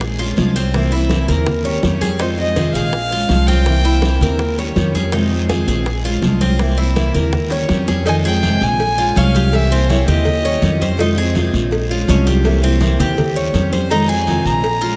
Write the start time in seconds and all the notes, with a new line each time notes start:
Already playing: A#1 G#4
0.00 muted steel-string acoustic guitar stroke, high bongo, high conga, long guiro
0.18 G#3 C#4 F4, high bongo, high conga
0.36 C2 F3 G#3 C#4 F4, high bongo, low bongo, high conga, short guiro
0.55 G#3 C4 C#4 F4, short guiro
0.74 C3 E3 A#3 C4 E4, high bongo, high conga, long guiro
0.92 A#3 C4 E4, high bongo, high conga
1.09 C3 E3 A#3 C4 E4, high bongo, high conga, short guiro
1.28 D#2 A#4, high bongo, high conga, low conga, short guiro
1.47 muted steel-string acoustic guitar stroke, high bongo, high conga, low conga, long guiro
1.64 G3 C#4 G4 C#5, high bongo, high conga
1.83 F2 D#3 G3 C#4 G4, high bongo, low bongo, high conga, short guiro
2.01 G3 C#4 G4 G#4, high conga, short guiro
2.19 C3 D#3 G#3 C4 D#4 F4 C5, high bongo, high conga, long guiro
2.38 G#3 C4 F4 D#5, high bongo, high conga
2.56 C3 D#3 G#3 C4 F4 G#4, high bongo, high conga, short guiro
2.74 A#1 G#4 F5, high bongo, high conga, short guiro
2.93 muted steel-string acoustic guitar stroke, high bongo, high conga, long guiro
3.11 G#3 C#4 F4, high bongo, high conga
3.29 C2 F3 G#3 C#4 F4, high bongo, low bongo, high conga, short guiro
3.47 G#3 C4 C#4 F4 G5, high conga, short guiro
3.66 C3 E3 A#3 C4 E4, high bongo, long guiro
3.84 A#3 C4 E4, high bongo, high conga
4.02 C3 E3 A#3 C4 E4, high bongo, high conga, short guiro
4.21 D#2 A#4, high bongo, high conga, low conga, short guiro
4.39 muted steel-string acoustic guitar stroke, high bongo, high conga, long guiro
4.58 G3 C#4 G4 C#5, high bongo, high conga
4.76 F2 D#3 G3 C#4 G4, high bongo, low bongo, high conga, short guiro
4.94 G3 C#4 G4 G#4, high conga, short guiro
5.12 C3 D#3 G#3 C4 D#4 F4, high bongo, high conga, long guiro
5.31 G#3 C4 F4, high bongo, high conga
5.49 C3 D#3 G#3 C4 F4 G#4, high bongo, high conga, short guiro
5.67 A#1 G#4, high bongo, high conga, short guiro
5.86 muted steel-string acoustic guitar stroke, high bongo, high conga, long guiro
6.04 G#3 C#4 F4, high bongo, high conga
6.22 C2 F3 G#3 C#4 F4, high bongo, low bongo, high conga, short guiro
6.41 G#3 C4 C#4 F4, high conga, short guiro
6.59 C3 E3 A#3 C4 E4, high bongo, high conga, long guiro
6.78 A#3 C4 E4, high bongo, high conga
6.96 C3 E3 A#3 C4 E4, high bongo, high conga, short guiro
7.14 D#2 A#4, high bongo, high conga, low conga, short guiro
7.32 muted steel-string acoustic guitar stroke, high bongo, high conga, low conga, long guiro
7.50 G3 C#4 G4 C#5, high bongo, high conga
7.69 F2 D#3 G3 C#4 G4, low bongo, high conga, short guiro
7.87 G3 C#4 G4 G#4, low bongo, high conga, short guiro
8.06 C3 D#3 G#3 C4 D#4 F4 G#5, cowbell, high conga, long guiro
8.24 G#3 C4 F4 G#4 G5, high conga
8.41 C3 D#3 G#3 C4 F4, cowbell, high conga, short guiro
8.61 A#1 G#5, high conga, short guiro
8.80 muted steel-string acoustic guitar stroke, cowbell, high conga, long guiro
8.98 G#3 C#4 F4, high conga
9.15 C2 F3 G#3 C#4 F4 F5, cowbell, high conga, short guiro
9.34 G#3 C#4 F4 G4, cowbell, high conga, short guiro
9.52 C3 E3 A#3 C4 E4 E5, cowbell, high conga, long guiro
9.71 A#3 C4 E4 C5, high conga
9.88 C3 E3 A#3 C4 E4 C#5, cowbell, high conga, short guiro
10.07 D#2 G4 D#5, cowbell, high conga, low conga, short guiro
10.25 muted steel-string acoustic guitar stroke, cowbell, high conga, low conga, long guiro
10.42 G3 C#4 G4 C#5, high conga
10.61 F2 D#3 G3 C#4 G4, cowbell, high conga, short guiro
10.80 G3 C#4 G4 C5, high conga, short guiro
10.97 C3 D#3 G#3 C4 D#4 F4, cowbell, high conga, long guiro
11.15 G#3 C4 F4 G#4, high conga
11.34 C3 D#3 G#3 C4 F4, cowbell, high conga, short guiro
11.53 A#1, high conga, short guiro
11.71 muted steel-string acoustic guitar stroke, cowbell, high conga, long guiro
11.89 G#3 C#4 F4, high conga
12.07 C2 F3 G#3 C#4 F4, cowbell, high conga, short guiro
12.24 G#3 C#4 F4 G4, cowbell, high conga, short guiro
12.44 C3 E3 A#3 C4 E4, cowbell, high conga, long guiro
12.62 A#3 C4 E4, high conga
12.80 C3 E3 A#3 C4 E4, cowbell, high conga, short guiro
12.99 D#2 G4, cowbell, high conga, low conga, short guiro
13.17 muted steel-string acoustic guitar stroke, cowbell, high conga, low conga, long guiro
13.35 G3 C#4 G4 C#5, high conga
13.54 F2 D#3 G3 C#4 G4, cowbell, high conga, short guiro
13.72 G3 C#4 G4 C5, high conga, short guiro
13.89 C3 D#3 G#3 C4 D#4 F4 A#5, cowbell, high conga, long guiro
14.08 G#3 C4 F4 G#4 G#5, high conga
14.27 C3 D#3 G#3 C4 F4, cowbell, high conga, short guiro
14.45 A#1 A#5, high conga, short guiro
14.64 muted steel-string acoustic guitar stroke, cowbell, high conga, long guiro
14.81 G#3 C#4 F4, high conga